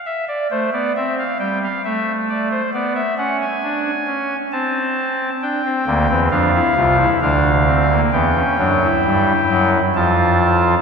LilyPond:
<<
  \new Staff \with { instrumentName = "Pipe organ" } { \time 3/4 \key d \minor \tempo 4 = 66 << { e''16 d''16 c''16 d''16 e''16 f''16 g''16 f''16 e''8 d''16 c''16 | d''16 e''16 fis''16 gis''4~ gis''16 a''4 | g''4 f''4 f''4 | g''2 a''4 | } \\ { r8 a16 b16 c'8 g8 a4 | b8 cis'8 d'8 cis'8 c'4 | d'16 c'16 bes16 c'16 d'16 e'16 f'16 e'16 d'8 c'16 bes16 | b16 cis'16 d'16 e'4~ e'16 f'4 | } >> }
  \new Staff \with { instrumentName = "Pipe organ" } { \clef bass \time 3/4 \key d \minor r2. | r2. | r8 <d, d>16 <e, e>16 <f, f>8 <c, c>8 <d, d>4 | <e, e>8 <fis, fis>8 <g, g>8 <fis, fis>8 <f, f>4 | }
>>